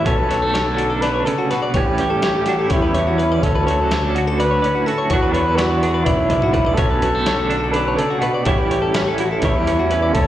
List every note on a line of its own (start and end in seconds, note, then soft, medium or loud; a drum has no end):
0.06 0.29 B1 medium
0.06 0.54 B2 medium
0.06 0.55 C#4 soft
0.06 1.03 A4 medium
0.06 0.18 C#5 medium
0.06 kick medium
0.06 closed hi-hat medium
0.18 0.31 B4 medium
0.29 1.22 B1 medium
0.29 0.42 F#3 soft
0.29 0.43 C#5 medium
0.29 snare soft
0.29 closed hi-hat medium
0.42 1.74 A3 soft
0.42 0.53 A4 medium
0.54 1.02 D3 medium
0.54 1.77 C#4 medium
0.54 0.67 C#5 medium
0.54 snare medium
0.54 closed hi-hat medium
0.67 0.79 A4 medium
0.77 1.75 D4 medium
0.77 0.90 F#4 medium
0.77 closed hi-hat soft
0.90 1.02 A4 medium
1.01 1.27 D3 medium
1.01 1.27 B4 medium
1.01 1.14 D5 medium
1.01 snare soft
1.01 closed hi-hat medium
1.14 1.26 C#5 medium
1.25 1.51 C#3 medium
1.25 1.52 A4 medium
1.25 1.38 D5 medium
1.25 closed hi-hat medium
1.38 1.51 F#4 medium
1.51 1.75 B2 medium
1.51 1.75 F#4 medium
1.51 1.62 B4 medium
1.51 snare soft
1.51 closed hi-hat medium
1.62 1.74 D5 medium
1.74 2.66 A1 medium
1.74 2.96 A2 medium
1.74 2.24 C#4 medium
1.74 2.73 G4 medium
1.74 1.86 C#5 medium
1.74 kick medium
1.74 closed hi-hat medium
1.86 1.99 B4 medium
1.98 2.72 G3 medium
1.98 2.11 C#5 medium
1.98 closed hi-hat medium
2.10 2.23 A4 medium
2.22 3.41 E3 medium
2.22 2.96 C#4 medium
2.22 2.35 C#5 medium
2.22 snare loud
2.22 closed hi-hat medium
2.35 2.47 A4 medium
2.46 2.62 D4 medium
2.46 2.58 F#4 medium
2.46 snare soft
2.46 closed hi-hat medium
2.59 3.44 E4 soft
2.59 2.71 A4 medium
2.70 3.39 E2 medium
2.70 3.44 E4 medium
2.70 2.82 C#5 medium
2.70 kick medium
2.70 closed hi-hat medium
2.74 3.42 G3 medium
2.82 2.94 B4 medium
2.94 3.42 E2 medium
2.94 3.07 C#5 medium
2.94 closed hi-hat soft
2.99 3.21 C#4 medium
3.07 3.19 F#4 medium
3.18 3.32 B4 medium
3.18 closed hi-hat soft
3.23 3.42 C#4 medium
3.32 3.42 D5 medium
3.42 3.65 D2 medium
3.42 5.11 D2 medium
3.42 4.12 A4 medium
3.42 3.55 C#5 medium
3.42 kick medium
3.42 closed hi-hat medium
3.46 3.93 C#4 medium
3.55 3.66 B4 medium
3.67 4.59 D2 medium
3.67 3.80 C#5 medium
3.67 closed hi-hat medium
3.71 4.41 F#3 medium
3.80 3.92 A4 medium
3.91 5.12 D3 medium
3.91 4.64 C#4 soft
3.91 4.04 C#5 medium
3.91 snare loud
3.91 closed hi-hat medium
4.04 4.15 A4 medium
4.15 4.27 F#4 medium
4.15 4.88 F#4 medium
4.15 closed hi-hat soft
4.27 4.39 A4 medium
4.39 5.12 F#3 medium
4.39 4.88 B4 loud
4.39 4.50 D5 medium
4.39 closed hi-hat medium
4.51 4.62 C#5 medium
4.62 5.12 A2 medium
4.62 5.09 C#4 medium
4.62 4.75 D5 medium
4.62 closed hi-hat soft
4.75 4.86 F#4 medium
4.86 5.14 F#4 medium
4.86 4.99 A4 medium
4.86 5.13 A4 medium
4.86 closed hi-hat soft
4.98 5.10 C#5 medium
5.10 6.03 E2 medium
5.10 6.05 E2 medium
5.10 5.57 E3 soft
5.10 5.35 F#3 medium
5.10 5.58 B3 medium
5.10 5.83 D4 medium
5.10 5.34 F#4 medium
5.10 5.22 C#5 medium
5.10 kick medium
5.10 closed hi-hat medium
5.22 5.33 B4 medium
5.33 7.02 F#3 medium
5.33 5.57 B4 medium
5.33 5.45 C#5 medium
5.33 closed hi-hat medium
5.45 5.57 B4 medium
5.56 6.76 E3 medium
5.56 6.77 B3 medium
5.56 6.06 F#4 medium
5.56 5.70 D5 medium
5.56 snare medium
5.56 closed hi-hat medium
5.71 5.82 B4 medium
5.83 7.49 D4 medium
5.83 5.94 G#4 medium
5.83 closed hi-hat medium
5.94 6.06 B4 medium
6.04 6.75 B1 medium
6.04 6.29 F#2 medium
6.04 6.76 E4 medium
6.04 6.17 D5 medium
6.04 kick medium
6.04 closed hi-hat medium
6.17 6.31 C#5 medium
6.30 6.54 G#2 medium
6.30 6.43 D5 medium
6.30 closed hi-hat medium
6.30 mid tom medium
6.42 6.55 F#4 medium
6.42 mid tom medium
6.53 6.77 A2 medium
6.53 6.66 B4 medium
6.53 kick medium
6.53 closed hi-hat soft
6.65 6.78 D5 medium
6.65 floor tom medium
6.75 7.01 B1 medium
6.75 7.26 B2 medium
6.75 7.26 C#4 soft
6.75 7.74 A4 medium
6.75 kick medium
6.75 closed hi-hat medium
6.79 6.90 C#5 medium
6.91 7.02 B4 medium
7.02 7.95 B1 medium
7.02 7.15 F#3 medium
7.02 7.14 C#5 medium
7.02 closed hi-hat medium
7.14 8.47 A3 soft
7.14 7.27 A4 medium
7.26 7.72 D3 medium
7.26 8.48 C#4 soft
7.26 7.39 C#5 medium
7.26 snare medium
7.26 closed hi-hat medium
7.39 7.52 A4 medium
7.50 8.47 D4 medium
7.50 7.63 F#4 medium
7.50 closed hi-hat soft
7.64 7.76 A4 medium
7.72 7.98 D3 medium
7.72 7.97 B4 medium
7.72 7.87 D5 medium
7.72 closed hi-hat medium
7.88 7.99 C#5 medium
7.97 8.21 C#3 medium
7.97 8.21 A4 medium
7.97 8.11 D5 medium
7.97 closed hi-hat medium
8.10 8.23 F#4 medium
8.20 8.45 B2 medium
8.20 8.45 F#4 medium
8.20 8.34 B4 medium
8.20 closed hi-hat medium
8.34 8.47 D5 medium
8.43 9.39 A1 medium
8.43 10.15 A2 medium
8.43 8.94 E3 medium
8.43 8.70 G3 medium
8.43 9.14 G4 medium
8.43 8.58 C#5 medium
8.43 kick loud
8.43 closed hi-hat medium
8.48 8.95 C#4 soft
8.48 9.19 E4 medium
8.58 8.71 B4 medium
8.71 9.43 G3 medium
8.71 8.81 C#5 medium
8.71 closed hi-hat medium
8.82 8.96 A4 medium
8.94 10.12 E3 medium
8.94 9.67 C#4 medium
8.94 9.08 C#5 medium
8.94 snare loud
8.94 closed hi-hat medium
9.08 9.20 A4 medium
9.18 10.13 E4 medium
9.18 9.32 F#4 medium
9.18 closed hi-hat medium
9.32 9.44 A4 medium
9.41 10.11 E2 medium
9.41 10.13 G3 medium
9.41 10.15 E4 medium
9.41 9.56 C#5 medium
9.41 kick medium
9.41 closed hi-hat medium
9.56 9.68 B4 medium
9.67 10.12 E2 medium
9.67 9.92 C#4 medium
9.67 9.80 C#5 medium
9.67 closed hi-hat medium
9.79 9.91 F#4 medium
9.91 10.16 C#4 medium
9.91 10.02 B4 medium
9.91 closed hi-hat medium
10.02 10.16 D5 medium
10.14 10.27 D2 medium
10.14 10.27 C#4 medium
10.14 10.27 A4 loud
10.14 10.27 C#5 medium
10.14 kick medium
10.14 closed hi-hat medium